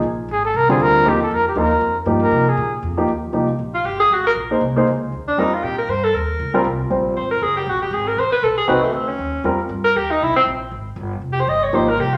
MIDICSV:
0, 0, Header, 1, 6, 480
1, 0, Start_track
1, 0, Tempo, 254345
1, 60, Time_signature, 4, 2, 24, 8
1, 22973, End_track
2, 0, Start_track
2, 0, Title_t, "Trumpet"
2, 0, Program_c, 0, 56
2, 605, Note_on_c, 0, 68, 81
2, 835, Note_off_c, 0, 68, 0
2, 852, Note_on_c, 0, 69, 85
2, 1071, Note_on_c, 0, 70, 91
2, 1099, Note_off_c, 0, 69, 0
2, 1319, Note_off_c, 0, 70, 0
2, 1330, Note_on_c, 0, 68, 85
2, 1553, Note_on_c, 0, 70, 97
2, 1581, Note_off_c, 0, 68, 0
2, 2053, Note_on_c, 0, 67, 84
2, 2082, Note_off_c, 0, 70, 0
2, 2298, Note_off_c, 0, 67, 0
2, 2310, Note_on_c, 0, 69, 83
2, 2532, Note_on_c, 0, 70, 91
2, 2560, Note_off_c, 0, 69, 0
2, 2777, Note_off_c, 0, 70, 0
2, 2792, Note_on_c, 0, 67, 64
2, 2998, Note_on_c, 0, 70, 79
2, 3027, Note_off_c, 0, 67, 0
2, 3731, Note_off_c, 0, 70, 0
2, 4197, Note_on_c, 0, 70, 87
2, 4699, Note_on_c, 0, 68, 82
2, 4727, Note_off_c, 0, 70, 0
2, 5162, Note_off_c, 0, 68, 0
2, 22973, End_track
3, 0, Start_track
3, 0, Title_t, "Alto saxophone"
3, 0, Program_c, 1, 65
3, 7073, Note_on_c, 1, 65, 74
3, 7279, Note_on_c, 1, 67, 66
3, 7308, Note_off_c, 1, 65, 0
3, 7536, Note_off_c, 1, 67, 0
3, 7547, Note_on_c, 1, 68, 90
3, 7796, Note_on_c, 1, 66, 72
3, 7824, Note_off_c, 1, 68, 0
3, 8043, Note_off_c, 1, 66, 0
3, 8054, Note_on_c, 1, 70, 94
3, 8167, Note_off_c, 1, 70, 0
3, 9963, Note_on_c, 1, 62, 80
3, 10181, Note_on_c, 1, 63, 68
3, 10209, Note_off_c, 1, 62, 0
3, 10447, Note_on_c, 1, 65, 66
3, 10476, Note_off_c, 1, 63, 0
3, 10631, Note_on_c, 1, 67, 75
3, 10659, Note_off_c, 1, 65, 0
3, 10903, Note_off_c, 1, 67, 0
3, 10914, Note_on_c, 1, 70, 76
3, 11123, Note_on_c, 1, 72, 85
3, 11152, Note_off_c, 1, 70, 0
3, 11400, Note_on_c, 1, 69, 73
3, 11429, Note_off_c, 1, 72, 0
3, 11594, Note_on_c, 1, 70, 71
3, 11622, Note_off_c, 1, 69, 0
3, 12554, Note_off_c, 1, 70, 0
3, 13529, Note_on_c, 1, 72, 73
3, 13781, Note_off_c, 1, 72, 0
3, 13793, Note_on_c, 1, 70, 80
3, 14016, Note_on_c, 1, 68, 72
3, 14044, Note_off_c, 1, 70, 0
3, 14266, Note_off_c, 1, 68, 0
3, 14278, Note_on_c, 1, 67, 76
3, 14520, Note_on_c, 1, 66, 74
3, 14548, Note_off_c, 1, 67, 0
3, 14751, Note_off_c, 1, 66, 0
3, 14763, Note_on_c, 1, 67, 69
3, 14976, Note_on_c, 1, 68, 69
3, 15005, Note_off_c, 1, 67, 0
3, 15238, Note_on_c, 1, 70, 80
3, 15266, Note_off_c, 1, 68, 0
3, 15461, Note_on_c, 1, 72, 84
3, 15489, Note_off_c, 1, 70, 0
3, 15695, Note_off_c, 1, 72, 0
3, 15706, Note_on_c, 1, 71, 88
3, 15921, Note_on_c, 1, 69, 74
3, 15949, Note_off_c, 1, 71, 0
3, 16172, Note_off_c, 1, 69, 0
3, 16184, Note_on_c, 1, 68, 75
3, 16385, Note_on_c, 1, 66, 69
3, 16414, Note_off_c, 1, 68, 0
3, 16655, Note_off_c, 1, 66, 0
3, 16666, Note_on_c, 1, 57, 59
3, 16867, Note_on_c, 1, 60, 69
3, 16895, Note_off_c, 1, 57, 0
3, 17142, Note_on_c, 1, 61, 74
3, 17171, Note_off_c, 1, 60, 0
3, 17826, Note_off_c, 1, 61, 0
3, 18575, Note_on_c, 1, 70, 85
3, 18803, Note_on_c, 1, 67, 78
3, 18831, Note_off_c, 1, 70, 0
3, 19071, Note_on_c, 1, 63, 83
3, 19099, Note_off_c, 1, 67, 0
3, 19303, Note_on_c, 1, 64, 82
3, 19331, Note_off_c, 1, 63, 0
3, 19545, Note_off_c, 1, 64, 0
3, 19556, Note_on_c, 1, 60, 88
3, 19673, Note_off_c, 1, 60, 0
3, 21375, Note_on_c, 1, 67, 70
3, 21519, Note_on_c, 1, 72, 74
3, 21547, Note_off_c, 1, 67, 0
3, 21684, Note_on_c, 1, 75, 83
3, 21712, Note_off_c, 1, 72, 0
3, 21949, Note_on_c, 1, 73, 95
3, 21978, Note_off_c, 1, 75, 0
3, 22175, Note_on_c, 1, 72, 77
3, 22203, Note_off_c, 1, 73, 0
3, 22434, Note_on_c, 1, 70, 83
3, 22462, Note_off_c, 1, 72, 0
3, 22645, Note_on_c, 1, 67, 75
3, 22673, Note_off_c, 1, 70, 0
3, 22914, Note_on_c, 1, 65, 82
3, 22942, Note_off_c, 1, 67, 0
3, 22973, Note_off_c, 1, 65, 0
3, 22973, End_track
4, 0, Start_track
4, 0, Title_t, "Grand piano"
4, 0, Program_c, 2, 0
4, 1305, Note_on_c, 2, 50, 75
4, 1307, Note_on_c, 2, 55, 63
4, 1316, Note_on_c, 2, 60, 68
4, 1319, Note_on_c, 2, 65, 76
4, 1945, Note_off_c, 2, 50, 0
4, 1946, Note_off_c, 2, 55, 0
4, 1950, Note_off_c, 2, 60, 0
4, 1952, Note_off_c, 2, 65, 0
4, 1979, Note_on_c, 2, 53, 71
4, 1992, Note_on_c, 2, 58, 66
4, 1997, Note_on_c, 2, 63, 64
4, 1998, Note_on_c, 2, 67, 82
4, 2233, Note_off_c, 2, 53, 0
4, 2239, Note_off_c, 2, 58, 0
4, 2242, Note_off_c, 2, 63, 0
4, 2242, Note_off_c, 2, 67, 0
4, 2941, Note_on_c, 2, 53, 62
4, 2948, Note_on_c, 2, 58, 57
4, 2957, Note_on_c, 2, 63, 60
4, 2964, Note_on_c, 2, 65, 70
4, 3194, Note_off_c, 2, 53, 0
4, 3197, Note_off_c, 2, 58, 0
4, 3202, Note_off_c, 2, 63, 0
4, 3206, Note_off_c, 2, 65, 0
4, 3891, Note_on_c, 2, 53, 67
4, 3895, Note_on_c, 2, 58, 58
4, 3900, Note_on_c, 2, 63, 57
4, 3910, Note_on_c, 2, 67, 67
4, 4602, Note_off_c, 2, 53, 0
4, 4604, Note_off_c, 2, 58, 0
4, 4606, Note_off_c, 2, 63, 0
4, 4611, Note_off_c, 2, 67, 0
4, 5612, Note_on_c, 2, 58, 56
4, 5613, Note_on_c, 2, 53, 61
4, 5619, Note_on_c, 2, 63, 59
4, 5629, Note_on_c, 2, 67, 73
4, 5800, Note_off_c, 2, 53, 0
4, 5800, Note_off_c, 2, 58, 0
4, 5804, Note_off_c, 2, 63, 0
4, 5809, Note_off_c, 2, 67, 0
4, 6279, Note_on_c, 2, 53, 62
4, 6288, Note_on_c, 2, 58, 49
4, 6298, Note_on_c, 2, 63, 55
4, 6311, Note_on_c, 2, 67, 60
4, 6545, Note_off_c, 2, 53, 0
4, 6549, Note_off_c, 2, 58, 0
4, 6554, Note_off_c, 2, 63, 0
4, 6561, Note_off_c, 2, 67, 0
4, 8510, Note_on_c, 2, 58, 59
4, 8511, Note_on_c, 2, 63, 59
4, 8513, Note_on_c, 2, 68, 57
4, 8525, Note_on_c, 2, 72, 64
4, 8691, Note_off_c, 2, 58, 0
4, 8691, Note_off_c, 2, 63, 0
4, 8692, Note_off_c, 2, 68, 0
4, 8698, Note_off_c, 2, 72, 0
4, 8988, Note_on_c, 2, 58, 74
4, 8996, Note_on_c, 2, 68, 63
4, 9000, Note_on_c, 2, 63, 64
4, 9012, Note_on_c, 2, 72, 75
4, 9170, Note_off_c, 2, 58, 0
4, 9174, Note_off_c, 2, 68, 0
4, 9176, Note_off_c, 2, 63, 0
4, 9182, Note_off_c, 2, 72, 0
4, 10154, Note_on_c, 2, 55, 60
4, 10162, Note_on_c, 2, 60, 58
4, 10171, Note_on_c, 2, 65, 56
4, 10181, Note_on_c, 2, 70, 66
4, 10404, Note_off_c, 2, 55, 0
4, 10408, Note_off_c, 2, 60, 0
4, 10413, Note_off_c, 2, 65, 0
4, 10418, Note_off_c, 2, 70, 0
4, 12339, Note_on_c, 2, 55, 73
4, 12350, Note_on_c, 2, 60, 65
4, 12356, Note_on_c, 2, 65, 71
4, 12356, Note_on_c, 2, 70, 81
4, 12526, Note_off_c, 2, 55, 0
4, 12532, Note_off_c, 2, 60, 0
4, 12535, Note_off_c, 2, 65, 0
4, 12535, Note_off_c, 2, 70, 0
4, 13024, Note_on_c, 2, 55, 51
4, 13029, Note_on_c, 2, 60, 45
4, 13037, Note_on_c, 2, 65, 45
4, 13042, Note_on_c, 2, 72, 57
4, 13509, Note_off_c, 2, 55, 0
4, 13511, Note_off_c, 2, 60, 0
4, 13515, Note_off_c, 2, 65, 0
4, 13518, Note_off_c, 2, 72, 0
4, 16378, Note_on_c, 2, 60, 70
4, 16383, Note_on_c, 2, 63, 64
4, 16392, Note_on_c, 2, 66, 58
4, 16398, Note_on_c, 2, 71, 75
4, 16635, Note_off_c, 2, 60, 0
4, 16638, Note_off_c, 2, 63, 0
4, 16643, Note_off_c, 2, 66, 0
4, 16645, Note_off_c, 2, 71, 0
4, 17817, Note_on_c, 2, 55, 59
4, 17834, Note_on_c, 2, 60, 53
4, 17837, Note_on_c, 2, 65, 56
4, 17843, Note_on_c, 2, 70, 69
4, 18074, Note_off_c, 2, 55, 0
4, 18083, Note_off_c, 2, 60, 0
4, 18084, Note_off_c, 2, 65, 0
4, 18087, Note_off_c, 2, 70, 0
4, 22135, Note_on_c, 2, 53, 64
4, 22143, Note_on_c, 2, 58, 60
4, 22150, Note_on_c, 2, 63, 59
4, 22156, Note_on_c, 2, 67, 69
4, 22388, Note_off_c, 2, 53, 0
4, 22392, Note_off_c, 2, 58, 0
4, 22395, Note_off_c, 2, 63, 0
4, 22398, Note_off_c, 2, 67, 0
4, 22973, End_track
5, 0, Start_track
5, 0, Title_t, "Upright bass"
5, 0, Program_c, 3, 32
5, 56, Note_on_c, 3, 34, 80
5, 524, Note_off_c, 3, 34, 0
5, 537, Note_on_c, 3, 32, 85
5, 1005, Note_off_c, 3, 32, 0
5, 1023, Note_on_c, 3, 36, 85
5, 1489, Note_off_c, 3, 36, 0
5, 1500, Note_on_c, 3, 38, 93
5, 1968, Note_off_c, 3, 38, 0
5, 1978, Note_on_c, 3, 39, 80
5, 2447, Note_off_c, 3, 39, 0
5, 2471, Note_on_c, 3, 41, 89
5, 2921, Note_off_c, 3, 41, 0
5, 2932, Note_on_c, 3, 39, 84
5, 3404, Note_off_c, 3, 39, 0
5, 3413, Note_on_c, 3, 41, 91
5, 3868, Note_off_c, 3, 41, 0
5, 3879, Note_on_c, 3, 43, 88
5, 4354, Note_off_c, 3, 43, 0
5, 4365, Note_on_c, 3, 48, 87
5, 4841, Note_off_c, 3, 48, 0
5, 4852, Note_on_c, 3, 46, 88
5, 5325, Note_off_c, 3, 46, 0
5, 5333, Note_on_c, 3, 41, 91
5, 5785, Note_off_c, 3, 41, 0
5, 5797, Note_on_c, 3, 39, 74
5, 6269, Note_off_c, 3, 39, 0
5, 6281, Note_on_c, 3, 36, 79
5, 6760, Note_off_c, 3, 36, 0
5, 6769, Note_on_c, 3, 34, 77
5, 7240, Note_off_c, 3, 34, 0
5, 7252, Note_on_c, 3, 31, 77
5, 7726, Note_off_c, 3, 31, 0
5, 7745, Note_on_c, 3, 32, 70
5, 8207, Note_off_c, 3, 32, 0
5, 8219, Note_on_c, 3, 34, 85
5, 8685, Note_off_c, 3, 34, 0
5, 8696, Note_on_c, 3, 36, 87
5, 9169, Note_off_c, 3, 36, 0
5, 9189, Note_on_c, 3, 37, 85
5, 9652, Note_off_c, 3, 37, 0
5, 9663, Note_on_c, 3, 39, 70
5, 10133, Note_off_c, 3, 39, 0
5, 10151, Note_on_c, 3, 41, 80
5, 10618, Note_off_c, 3, 41, 0
5, 10629, Note_on_c, 3, 46, 79
5, 11082, Note_off_c, 3, 46, 0
5, 11093, Note_on_c, 3, 43, 86
5, 11569, Note_off_c, 3, 43, 0
5, 11578, Note_on_c, 3, 39, 82
5, 12051, Note_off_c, 3, 39, 0
5, 12065, Note_on_c, 3, 37, 83
5, 12522, Note_off_c, 3, 37, 0
5, 12533, Note_on_c, 3, 36, 82
5, 13009, Note_off_c, 3, 36, 0
5, 13031, Note_on_c, 3, 34, 84
5, 13497, Note_off_c, 3, 34, 0
5, 13522, Note_on_c, 3, 32, 75
5, 13976, Note_off_c, 3, 32, 0
5, 13988, Note_on_c, 3, 30, 84
5, 14456, Note_off_c, 3, 30, 0
5, 14464, Note_on_c, 3, 34, 80
5, 14612, Note_on_c, 3, 32, 50
5, 14641, Note_off_c, 3, 34, 0
5, 14756, Note_off_c, 3, 32, 0
5, 14767, Note_on_c, 3, 30, 55
5, 14913, Note_off_c, 3, 30, 0
5, 14924, Note_on_c, 3, 32, 87
5, 15403, Note_off_c, 3, 32, 0
5, 15414, Note_on_c, 3, 33, 71
5, 15879, Note_off_c, 3, 33, 0
5, 15891, Note_on_c, 3, 35, 78
5, 16366, Note_off_c, 3, 35, 0
5, 16375, Note_on_c, 3, 36, 85
5, 16642, Note_off_c, 3, 36, 0
5, 16855, Note_on_c, 3, 38, 83
5, 17321, Note_off_c, 3, 38, 0
5, 17333, Note_on_c, 3, 39, 80
5, 17799, Note_off_c, 3, 39, 0
5, 17810, Note_on_c, 3, 41, 90
5, 18276, Note_off_c, 3, 41, 0
5, 18287, Note_on_c, 3, 43, 91
5, 18763, Note_off_c, 3, 43, 0
5, 18786, Note_on_c, 3, 39, 84
5, 19245, Note_off_c, 3, 39, 0
5, 19256, Note_on_c, 3, 36, 81
5, 19424, Note_off_c, 3, 36, 0
5, 19424, Note_on_c, 3, 34, 56
5, 19559, Note_off_c, 3, 34, 0
5, 19571, Note_on_c, 3, 31, 59
5, 19726, Note_off_c, 3, 31, 0
5, 19736, Note_on_c, 3, 34, 87
5, 20206, Note_off_c, 3, 34, 0
5, 20217, Note_on_c, 3, 32, 83
5, 20672, Note_off_c, 3, 32, 0
5, 20683, Note_on_c, 3, 31, 84
5, 21157, Note_off_c, 3, 31, 0
5, 21167, Note_on_c, 3, 29, 75
5, 21639, Note_off_c, 3, 29, 0
5, 21652, Note_on_c, 3, 31, 90
5, 22121, Note_off_c, 3, 31, 0
5, 22135, Note_on_c, 3, 32, 81
5, 22587, Note_off_c, 3, 32, 0
5, 22598, Note_on_c, 3, 36, 87
5, 22973, Note_off_c, 3, 36, 0
5, 22973, End_track
6, 0, Start_track
6, 0, Title_t, "Muted upright bass strokes"
6, 16666, Note_on_c, 9, 29, 40
6, 16854, Note_off_c, 9, 29, 0
6, 22973, End_track
0, 0, End_of_file